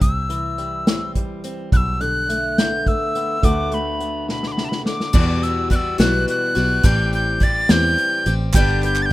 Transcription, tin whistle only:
0, 0, Header, 1, 2, 480
1, 0, Start_track
1, 0, Key_signature, 1, "major"
1, 0, Tempo, 568182
1, 12, Time_signature, 6, 3, 24, 8
1, 7709, End_track
2, 0, Start_track
2, 0, Title_t, "Tin whistle"
2, 0, Program_c, 0, 75
2, 11, Note_on_c, 0, 88, 67
2, 941, Note_off_c, 0, 88, 0
2, 1464, Note_on_c, 0, 90, 72
2, 1492, Note_on_c, 0, 88, 78
2, 1501, Note_off_c, 0, 90, 0
2, 1697, Note_on_c, 0, 90, 84
2, 1710, Note_off_c, 0, 88, 0
2, 2183, Note_on_c, 0, 91, 79
2, 2196, Note_off_c, 0, 90, 0
2, 2431, Note_on_c, 0, 88, 85
2, 2443, Note_off_c, 0, 91, 0
2, 2912, Note_on_c, 0, 86, 77
2, 2924, Note_off_c, 0, 88, 0
2, 3160, Note_on_c, 0, 83, 66
2, 3172, Note_off_c, 0, 86, 0
2, 3630, Note_off_c, 0, 83, 0
2, 3637, Note_on_c, 0, 83, 55
2, 3780, Note_on_c, 0, 86, 50
2, 3789, Note_off_c, 0, 83, 0
2, 3817, Note_on_c, 0, 83, 55
2, 3826, Note_off_c, 0, 86, 0
2, 3924, Note_on_c, 0, 81, 50
2, 3932, Note_off_c, 0, 83, 0
2, 3961, Note_on_c, 0, 83, 55
2, 3969, Note_off_c, 0, 81, 0
2, 4076, Note_off_c, 0, 83, 0
2, 4111, Note_on_c, 0, 86, 63
2, 4588, Note_on_c, 0, 88, 63
2, 4600, Note_off_c, 0, 86, 0
2, 4821, Note_off_c, 0, 88, 0
2, 4826, Note_on_c, 0, 90, 64
2, 4861, Note_on_c, 0, 88, 69
2, 4870, Note_off_c, 0, 90, 0
2, 5046, Note_off_c, 0, 88, 0
2, 5066, Note_on_c, 0, 90, 79
2, 5286, Note_off_c, 0, 90, 0
2, 5320, Note_on_c, 0, 90, 89
2, 5791, Note_on_c, 0, 91, 85
2, 5804, Note_off_c, 0, 90, 0
2, 6024, Note_off_c, 0, 91, 0
2, 6037, Note_on_c, 0, 91, 80
2, 6280, Note_on_c, 0, 93, 82
2, 6293, Note_off_c, 0, 91, 0
2, 6512, Note_on_c, 0, 91, 94
2, 6525, Note_off_c, 0, 93, 0
2, 7043, Note_off_c, 0, 91, 0
2, 7227, Note_on_c, 0, 91, 89
2, 7444, Note_off_c, 0, 91, 0
2, 7479, Note_on_c, 0, 91, 87
2, 7622, Note_on_c, 0, 93, 80
2, 7631, Note_off_c, 0, 91, 0
2, 7652, Note_on_c, 0, 91, 87
2, 7660, Note_off_c, 0, 93, 0
2, 7709, Note_off_c, 0, 91, 0
2, 7709, End_track
0, 0, End_of_file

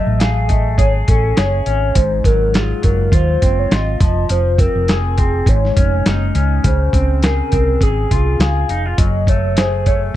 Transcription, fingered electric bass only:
0, 0, Header, 1, 2, 480
1, 0, Start_track
1, 0, Key_signature, -5, "major"
1, 0, Tempo, 585366
1, 1606, Time_signature, 4, 2, 24, 8
1, 8333, End_track
2, 0, Start_track
2, 0, Title_t, "Fingered electric bass"
2, 0, Program_c, 0, 33
2, 55, Note_on_c, 0, 33, 87
2, 615, Note_off_c, 0, 33, 0
2, 639, Note_on_c, 0, 32, 75
2, 834, Note_off_c, 0, 32, 0
2, 887, Note_on_c, 0, 33, 84
2, 1078, Note_off_c, 0, 33, 0
2, 1125, Note_on_c, 0, 30, 85
2, 1317, Note_off_c, 0, 30, 0
2, 1363, Note_on_c, 0, 32, 77
2, 1556, Note_off_c, 0, 32, 0
2, 1605, Note_on_c, 0, 32, 98
2, 1798, Note_off_c, 0, 32, 0
2, 1842, Note_on_c, 0, 32, 94
2, 2227, Note_off_c, 0, 32, 0
2, 2328, Note_on_c, 0, 30, 85
2, 2519, Note_off_c, 0, 30, 0
2, 2557, Note_on_c, 0, 39, 81
2, 2752, Note_off_c, 0, 39, 0
2, 2808, Note_on_c, 0, 30, 80
2, 2999, Note_off_c, 0, 30, 0
2, 3044, Note_on_c, 0, 32, 90
2, 3236, Note_off_c, 0, 32, 0
2, 3283, Note_on_c, 0, 29, 77
2, 3476, Note_off_c, 0, 29, 0
2, 3526, Note_on_c, 0, 29, 104
2, 3823, Note_off_c, 0, 29, 0
2, 3897, Note_on_c, 0, 29, 85
2, 4455, Note_off_c, 0, 29, 0
2, 4480, Note_on_c, 0, 32, 91
2, 4674, Note_off_c, 0, 32, 0
2, 4730, Note_on_c, 0, 29, 86
2, 4920, Note_off_c, 0, 29, 0
2, 4973, Note_on_c, 0, 30, 76
2, 5161, Note_off_c, 0, 30, 0
2, 5207, Note_on_c, 0, 37, 75
2, 5398, Note_off_c, 0, 37, 0
2, 5448, Note_on_c, 0, 37, 97
2, 5638, Note_off_c, 0, 37, 0
2, 5686, Note_on_c, 0, 37, 92
2, 6069, Note_off_c, 0, 37, 0
2, 6171, Note_on_c, 0, 36, 88
2, 6360, Note_off_c, 0, 36, 0
2, 6405, Note_on_c, 0, 32, 80
2, 6597, Note_off_c, 0, 32, 0
2, 6653, Note_on_c, 0, 36, 80
2, 6841, Note_off_c, 0, 36, 0
2, 6882, Note_on_c, 0, 37, 79
2, 7075, Note_off_c, 0, 37, 0
2, 7124, Note_on_c, 0, 29, 75
2, 7316, Note_off_c, 0, 29, 0
2, 7365, Note_on_c, 0, 30, 90
2, 8291, Note_off_c, 0, 30, 0
2, 8333, End_track
0, 0, End_of_file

